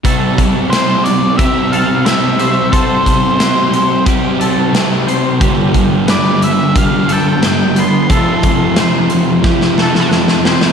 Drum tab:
HH |x-x-x-x-x-x-x-x-|x-x-x-x-x-x-x-x-|x-x-x-x-x-x-x-x-|x-x-x-x---------|
SD |----o-------o---|----o-------o---|----o-------o---|----o---oooooooo|
BD |o-o-----o-------|o-o-----o-------|o-o-----o-------|o-o-----o-------|